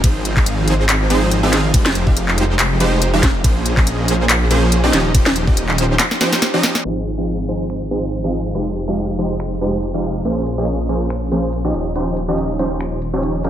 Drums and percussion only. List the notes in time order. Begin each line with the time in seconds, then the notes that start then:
0.04 kick, closed hi-hat, ride
0.25 closed hi-hat
0.37 kick, clap
0.46 closed hi-hat
0.68 closed hi-hat
0.89 clap, closed hi-hat, ride
1.10 closed hi-hat
1.31 closed hi-hat
1.53 snare, closed hi-hat
1.74 kick, closed hi-hat, ride
1.86 snare
1.95 closed hi-hat
2.07 kick
2.17 closed hi-hat
2.28 clap
2.38 closed hi-hat
2.59 clap, closed hi-hat, ride
2.80 closed hi-hat
3.02 closed hi-hat
3.23 kick, snare, closed hi-hat
3.44 kick, closed hi-hat, ride
3.66 closed hi-hat
3.77 kick, clap
3.87 closed hi-hat
4.08 closed hi-hat
4.29 clap, closed hi-hat, ride
4.51 closed hi-hat
4.72 closed hi-hat
4.93 snare, closed hi-hat
5.14 kick, closed hi-hat, ride
5.26 snare
5.36 closed hi-hat
5.47 kick
5.57 closed hi-hat
5.69 clap
5.78 closed hi-hat
5.99 snare, clap, closed hi-hat, ride
6.11 snare
6.21 snare, closed hi-hat
6.33 snare
6.42 snare, closed hi-hat
6.63 snare, closed hi-hat
6.75 snare
6.85 closed hi-hat
7.06 closed hi-hat
7.27 closed hi-hat
7.49 closed hi-hat
7.70 finger snap, closed hi-hat
7.91 closed hi-hat
8.12 closed hi-hat
8.34 closed hi-hat
8.55 closed hi-hat
8.76 closed hi-hat
8.97 closed hi-hat
9.19 closed hi-hat
9.40 finger snap, closed hi-hat
9.61 closed hi-hat
9.83 closed hi-hat
10.04 closed hi-hat
10.25 closed hi-hat
10.46 closed hi-hat
10.68 closed hi-hat
10.89 closed hi-hat
11.10 finger snap, closed hi-hat
11.32 closed hi-hat
11.53 closed hi-hat
11.74 closed hi-hat
11.95 closed hi-hat
12.17 closed hi-hat
12.38 closed hi-hat
12.59 closed hi-hat
12.81 finger snap, closed hi-hat
13.02 closed hi-hat
13.23 closed hi-hat
13.44 closed hi-hat